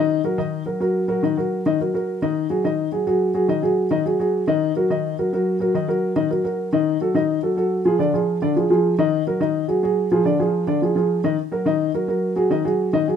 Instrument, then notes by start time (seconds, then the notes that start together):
upright piano
Already playing: D#3 D#4 D#5
0.24 F#3 F#4 A#4
0.38 D#3 D#4 D#5
0.66 F#3 F#4 A#4
0.80 F#3 F#4 A#4
1.08 F#3 F#4 A#4
1.23 D#3 D#4 D#5
1.37 F#3 F#4 A#4
1.66 D#3 D#4 D#5
1.80 F#3 F#4 A#4
1.94 F#3 F#4 A#4
2.22 D#3 D#4 D#5
2.50 F#3 F#4 G#4
2.64 D#3 D#4 D#5
2.92 F#3 F#4 G#4
3.07 F#3 F#4 G#4
3.34 F#3 F#4 G#4
3.48 D#3 D#4 D#5
3.62 F#3 F#4 G#4
3.91 D#3 D#4 D#5
4.05 F#3 F#4 G#4
4.19 F#3 F#4 G#4
4.47 D#3 D#4 D#5
4.76 F#3 F#4 A#4
4.90 D#3 D#4 D#5
5.19 F#3 F#4 A#4
5.33 F#3 F#4 A#4
5.60 F#3 F#4 A#4
5.74 D#3 D#4 D#5
5.88 F#3 F#4 A#4
6.16 D#3 D#4 D#5
6.30 F#3 F#4 A#4
6.44 F#3 F#4 A#4
6.72 D#3 D#4 D#5
7.01 F#3 F#4 A4
7.14 D#3 D#4 D#5
7.43 F#3 F#4 A4
7.57 F#3 F#4 A4
7.85 F3 F4 G#4
7.99 D3 D4 D5
8.14 F3 F4 G#4
8.42 D3 D4 D5
8.56 F3 F4 G#4
8.70 F3 F4 G#4
8.98 D#3 D#4 D#5
9.27 F#3 F#4 A#4
9.40 D#3 D#4 D#5
9.68 F#3 F#4 G#4
9.83 F#3 F#4 G#4
10.12 F3 F4 G#4
10.25 D3 D4 D5
10.40 F3 F4 G#4
10.67 D3 D4 D5
10.82 F3 F4 G#4
10.96 F3 F4 G#4
11.24 D#3 D#4 D#5
11.52 F#3 F#4 A#4
11.65 D#3 D#4 D#5
11.94 F#3 F#4 A#4
12.08 F#3 F#4 A#4
12.36 F#3 F#4 G#4
12.50 D#3 D#4 D#5
12.65 F#3 F#4 G#4
12.93 D#3 D#4 D#5
13.08 F#3 F#4 G#4